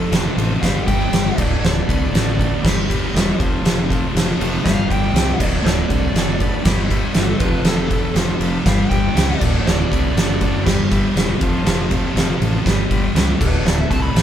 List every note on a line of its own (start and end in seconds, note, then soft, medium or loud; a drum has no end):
0.00 0.11 F2 medium
0.00 0.11 C3 medium
0.00 0.12 F3 medium
0.00 0.10 A4 medium
0.10 0.29 F1 medium
0.10 0.37 F2 medium
0.10 0.38 C3 loud
0.10 0.38 F3 loud
0.10 0.29 F4 medium
0.10 0.29 A4 medium
0.10 0.30 C5 medium
0.10 snare loud
0.10 ride loud
0.35 0.55 A1 medium
0.35 0.61 F2 medium
0.35 0.62 C3 medium
0.35 0.54 F4 loud
0.35 0.54 A4 medium
0.35 0.54 C5 loud
0.35 ride medium
0.39 0.62 F3 medium
0.61 0.81 G1 medium
0.61 0.87 G2 loud
0.61 0.87 D3 loud
0.61 0.89 G3 loud
0.61 0.80 G4 loud
0.61 0.80 B4 medium
0.61 0.80 D5 loud
0.61 0.86 F5 medium
0.61 kick loud
0.61 snare loud
0.61 ride loud
0.85 1.06 G1 medium
0.85 1.11 G2 loud
0.85 1.04 G4 medium
0.85 1.04 B4 medium
0.85 1.04 D5 medium
0.85 1.39 G5 medium
0.85 kick medium
0.85 ride medium
0.89 1.12 D3 loud
0.89 1.12 G3 loud
1.08 1.36 G2 medium
1.08 1.29 G4 medium
1.08 1.28 B4 medium
1.08 1.29 D5 medium
1.13 1.31 G1 medium
1.13 1.36 D3 loud
1.13 1.36 G3 medium
1.13 snare loud
1.13 ride loud
1.35 1.56 D1 loud
1.35 1.60 D2 medium
1.35 1.62 A2 medium
1.35 1.63 D3 medium
1.35 1.76 F#4 medium
1.35 1.77 A4 medium
1.35 1.77 D5 loud
1.35 kick loud
1.35 crash loud
1.39 1.63 D5 medium
1.62 1.81 D1 loud
1.62 1.86 D2 loud
1.62 1.86 A2 loud
1.62 1.87 D3 loud
1.62 2.62 D5 loud
1.62 snare loud
1.86 2.07 C2 medium
1.86 2.11 D2 medium
1.86 2.11 A2 medium
1.86 2.12 D3 loud
1.86 2.05 F#4 medium
1.86 2.05 A4 medium
1.86 2.05 B4 medium
1.86 kick medium
1.86 ride medium
2.12 2.50 A1 medium
2.12 2.35 D2 loud
2.12 2.36 A2 loud
2.12 2.37 D3 loud
2.12 2.31 F#4 medium
2.12 2.31 A4 medium
2.12 2.31 D5 medium
2.12 snare loud
2.12 ride loud
2.37 2.61 D2 medium
2.37 2.61 A2 medium
2.37 2.62 D3 loud
2.37 2.55 F#4 loud
2.37 2.56 A4 medium
2.37 2.56 D5 loud
2.37 kick medium
2.41 ride medium
2.62 3.00 G1 medium
2.62 2.86 G2 medium
2.62 2.86 D3 loud
2.62 2.87 G3 loud
2.62 2.81 G4 loud
2.62 2.81 B4 loud
2.62 2.82 D5 loud
2.62 kick loud
2.62 snare loud
2.62 crash loud
2.87 3.12 G2 medium
2.87 3.13 D3 loud
2.87 3.14 G3 loud
2.87 3.07 G4 loud
2.87 3.07 B4 medium
2.87 3.07 D5 medium
2.87 kick medium
2.87 ride medium
3.13 3.32 E1 loud
3.13 3.37 G2 loud
3.13 3.37 D3 loud
3.13 3.38 G3 loud
3.13 3.32 G4 loud
3.13 3.32 B4 medium
3.13 3.32 D5 loud
3.13 snare loud
3.13 ride loud
3.37 3.58 F1 loud
3.37 3.62 F2 medium
3.37 3.62 C3 medium
3.37 3.63 F3 loud
3.37 3.80 F4 loud
3.37 3.80 A4 medium
3.37 kick loud
3.37 ride medium
3.41 3.80 C5 loud
3.63 4.00 F1 loud
3.63 3.87 F2 loud
3.63 3.88 C3 loud
3.63 3.89 F3 loud
3.63 snare loud
3.63 ride loud
3.88 4.12 F2 medium
3.88 4.13 C3 loud
3.88 4.14 F3 loud
3.88 4.08 F4 medium
3.88 4.08 A4 medium
3.88 4.08 C5 loud
3.88 kick medium
3.88 ride medium
4.13 4.33 F1 medium
4.13 4.37 F2 loud
4.13 4.38 C3 loud
4.13 4.39 F3 loud
4.13 4.33 F4 medium
4.13 4.33 A4 medium
4.13 4.33 C5 loud
4.13 snare loud
4.13 ride loud
4.38 4.58 F1 medium
4.38 4.63 F2 medium
4.38 4.63 C3 medium
4.38 4.64 F3 loud
4.38 4.58 F4 loud
4.38 4.58 A4 medium
4.38 4.58 C5 loud
4.38 ride medium
4.63 4.83 G1 loud
4.63 4.87 G2 medium
4.63 4.88 D3 loud
4.63 4.89 G3 loud
4.63 4.82 G4 loud
4.63 4.83 B4 loud
4.63 4.83 D5 loud
4.63 4.89 F5 loud
4.63 kick loud
4.63 snare loud
4.63 ride loud
4.88 5.08 G1 medium
4.88 5.11 G2 medium
4.88 5.12 D3 loud
4.88 5.13 G3 medium
4.88 5.07 G4 medium
4.88 5.07 B4 medium
4.88 5.07 D5 medium
4.88 5.42 G5 medium
4.88 kick medium
4.88 ride medium
5.12 5.32 C2 loud
5.12 5.37 G2 medium
5.12 5.38 D3 medium
5.12 5.38 G3 loud
5.12 5.33 G4 medium
5.12 5.33 B4 medium
5.12 5.33 D5 medium
5.12 ride loud
5.17 snare loud
5.38 5.58 D1 medium
5.38 5.61 D2 medium
5.38 5.62 A2 loud
5.38 5.62 D3 medium
5.38 5.80 F#4 medium
5.38 5.80 A4 medium
5.38 5.80 D5 medium
5.38 kick loud
5.38 crash loud
5.42 5.63 D5 medium
5.62 5.82 D1 medium
5.62 5.87 D2 loud
5.62 5.87 A2 loud
5.62 5.88 D3 loud
5.62 6.62 D5 loud
5.67 snare loud
5.88 6.08 C2 medium
5.88 6.12 D2 medium
5.88 6.13 A2 medium
5.88 6.13 D3 loud
5.88 6.07 F#4 medium
5.88 6.08 A4 medium
5.88 6.08 D5 medium
5.88 kick medium
5.88 ride medium
6.13 6.50 F#1 medium
6.13 6.37 D2 medium
6.13 6.38 A2 medium
6.13 6.39 D3 loud
6.13 6.33 F#4 medium
6.13 6.33 A4 medium
6.13 6.33 D5 medium
6.13 snare loud
6.13 ride loud
6.38 6.62 D2 medium
6.38 6.63 A2 medium
6.38 6.62 D3 medium
6.38 6.58 F#4 medium
6.38 6.58 A4 medium
6.38 6.58 B4 loud
6.38 kick medium
6.38 ride medium
6.63 7.01 G1 loud
6.63 6.88 G2 loud
6.63 6.88 D3 medium
6.63 6.88 G3 loud
6.63 6.82 G4 loud
6.63 6.83 B4 loud
6.63 6.83 D5 loud
6.63 kick loud
6.63 snare loud
6.63 crash medium
6.89 7.12 G2 loud
6.89 7.13 D3 loud
6.89 7.14 G3 loud
6.89 7.08 G4 medium
6.89 7.08 B4 medium
6.89 7.08 E5 loud
6.89 kick medium
6.89 ride medium
7.13 7.33 G1 loud
7.13 7.38 G2 medium
7.13 7.38 D3 loud
7.13 7.39 G3 medium
7.13 7.28 F#4 medium
7.13 7.33 G4 medium
7.13 7.33 B4 medium
7.13 7.33 D5 medium
7.13 snare loud
7.13 ride loud
7.29 7.39 A4 medium
7.39 7.58 F1 loud
7.39 7.62 F2 medium
7.39 7.63 C3 loud
7.39 7.64 F3 loud
7.39 7.80 F4 medium
7.39 7.80 A4 medium
7.39 7.64 B4 medium
7.39 7.80 C5 medium
7.39 kick loud
7.39 ride medium
7.63 8.01 F1 medium
7.63 7.86 F2 medium
7.63 7.87 C3 loud
7.63 7.87 F3 loud
7.63 8.14 A4 loud
7.63 snare loud
7.63 ride loud
7.87 8.13 F2 loud
7.87 8.13 C3 loud
7.87 8.14 F3 medium
7.87 8.08 F4 medium
7.87 8.08 A4 medium
7.87 kick medium
7.87 ride medium
7.92 8.09 B4 medium
8.14 8.32 F1 medium
8.14 8.38 F2 medium
8.14 8.39 C3 loud
8.14 8.39 F3 loud
8.14 8.34 F4 medium
8.14 8.34 A4 medium
8.14 snare loud
8.14 ride loud
8.19 8.35 C5 medium
8.39 8.58 F1 medium
8.39 8.63 F2 medium
8.39 8.64 C3 loud
8.39 8.64 F3 loud
8.39 8.59 F4 loud
8.39 8.59 A4 medium
8.39 8.59 B4 loud
8.39 ride medium
8.64 8.84 G1 loud
8.64 8.88 G2 loud
8.64 8.89 D3 loud
8.64 8.89 G3 loud
8.64 8.84 G4 loud
8.64 8.89 F5 loud
8.64 kick loud
8.64 snare loud
8.64 ride loud
8.68 8.84 B4 loud
8.68 8.84 D5 loud
8.89 9.08 G1 medium
8.89 9.12 G2 loud
8.89 9.13 D3 medium
8.89 9.14 G3 loud
8.89 9.09 G4 medium
8.89 9.09 B4 medium
8.89 9.09 D5 medium
8.89 9.38 G5 medium
8.89 kick medium
8.89 ride medium
9.13 9.33 C#2 loud
9.13 9.38 G2 loud
9.13 9.38 D3 loud
9.13 9.39 G3 loud
9.13 9.33 G4 medium
9.13 9.33 B4 medium
9.13 9.34 E5 medium
9.13 ride loud
9.17 snare loud
9.38 9.59 D1 medium
9.38 9.63 D2 loud
9.38 9.64 A2 loud
9.38 9.65 D3 loud
9.38 9.80 F#4 medium
9.38 9.80 A4 medium
9.38 9.64 D5 medium
9.38 9.81 D5 loud
9.38 kick loud
9.38 crash loud
9.65 9.83 D1 loud
9.65 9.88 D2 loud
9.65 9.89 A2 loud
9.65 9.90 D3 loud
9.65 10.62 D5 loud
9.65 snare loud
9.89 10.09 C2 medium
9.89 10.14 D2 medium
9.89 10.15 A2 loud
9.89 10.15 D3 loud
9.89 10.08 F#4 medium
9.89 10.08 A4 medium
9.89 10.08 B4 medium
9.89 kick medium
9.89 ride medium
10.15 10.66 F#1 loud
10.15 10.39 D2 loud
10.15 10.40 A2 medium
10.15 10.40 D3 loud
10.15 10.34 F#4 medium
10.15 10.34 A4 medium
10.15 10.34 D5 medium
10.15 snare loud
10.15 ride loud
10.40 10.64 D2 medium
10.40 10.64 A2 medium
10.40 10.63 D3 loud
10.40 10.58 F#4 loud
10.40 10.59 A4 medium
10.40 10.59 D5 loud
10.40 kick medium
10.40 ride medium
10.64 11.02 G1 loud
10.64 10.88 G2 medium
10.64 10.89 D3 loud
10.64 10.90 G3 loud
10.64 10.83 G4 loud
10.64 10.83 B4 loud
10.64 10.83 D5 loud
10.64 kick loud
10.64 snare loud
10.64 crash loud
10.90 11.13 G2 loud
10.90 11.14 D3 loud
10.90 11.15 G3 loud
10.90 11.09 G4 loud
10.90 11.09 B4 medium
10.90 11.09 E5 loud
10.90 kick medium
10.90 ride medium
11.15 11.34 E1 loud
11.15 11.38 G2 loud
11.15 11.39 D3 medium
11.15 11.39 G3 loud
11.15 11.33 G4 medium
11.15 11.34 B4 medium
11.15 11.34 D5 loud
11.15 snare loud
11.15 ride loud
11.39 11.59 F1 medium
11.39 11.62 F2 loud
11.39 11.63 C3 loud
11.39 11.64 F3 loud
11.39 11.81 F4 loud
11.39 11.81 A4 loud
11.39 11.81 C5 loud
11.39 kick loud
11.39 ride medium
11.63 12.02 F1 medium
11.63 11.88 F2 loud
11.63 11.89 C3 loud
11.63 11.89 F3 loud
11.63 ride loud
11.67 snare loud
11.89 12.13 F2 medium
11.89 12.14 C3 medium
11.89 12.14 F3 loud
11.89 12.09 F4 loud
11.89 12.10 A4 medium
11.89 12.09 C5 loud
11.89 kick medium
11.89 ride medium
12.14 12.33 F1 loud
12.14 12.39 F2 medium
12.14 12.39 C3 medium
12.14 12.40 F3 loud
12.14 12.34 F4 medium
12.14 12.34 A4 medium
12.14 snare loud
12.14 ride loud
12.18 12.35 C5 medium
12.40 12.58 A1 medium
12.40 12.64 F2 medium
12.40 12.64 C3 medium
12.40 12.64 F3 loud
12.40 12.58 F4 loud
12.40 12.59 A4 medium
12.40 12.59 C5 loud
12.40 ride medium
12.65 12.84 G1 medium
12.65 12.88 G2 loud
12.65 12.89 D3 loud
12.65 12.88 G3 loud
12.65 12.83 G4 loud
12.65 12.84 B4 loud
12.65 12.84 D5 loud
12.65 kick loud
12.65 snare loud
12.65 ride loud
12.89 13.09 G1 loud
12.89 13.13 G2 medium
12.89 13.13 D3 medium
12.89 13.14 G3 loud
12.89 13.08 G4 medium
12.89 13.08 B4 medium
12.89 13.08 D5 loud
12.89 kick medium
12.89 ride medium
13.14 13.33 C#2 medium
13.14 13.37 G2 loud
13.14 13.37 D3 medium
13.14 13.38 G3 medium
13.14 13.33 G4 medium
13.14 13.33 B4 medium
13.14 13.33 D5 loud
13.14 snare loud
13.14 ride loud
13.37 13.59 D1 loud
13.37 13.61 D2 loud
13.37 13.61 A2 loud
13.37 13.63 D3 loud
13.37 13.80 F#4 medium
13.37 13.80 A4 medium
13.37 13.65 B4 loud
13.37 13.80 D5 medium
13.37 kick loud
13.37 crash loud
13.62 13.83 D1 loud
13.62 13.87 D2 medium
13.62 13.87 A2 loud
13.62 13.88 D3 loud
13.67 13.79 D5 medium
13.67 snare loud
13.80 13.91 E5 medium
13.88 14.08 C2 medium
13.88 14.13 D2 medium
13.88 14.15 A2 medium
13.88 14.15 D3 medium
13.88 14.07 F#4 medium
13.88 14.07 A4 medium
13.88 14.07 E5 medium
13.88 14.02 A5 loud
13.88 kick medium
13.88 ride medium
14.02 14.22 B5 loud
14.14 14.22 A1 loud
14.14 14.22 D2 medium
14.14 14.22 A2 loud
14.14 14.22 D3 loud
14.14 14.22 F#4 medium
14.14 14.22 A4 medium
14.14 14.22 D5 medium
14.14 snare loud
14.14 ride loud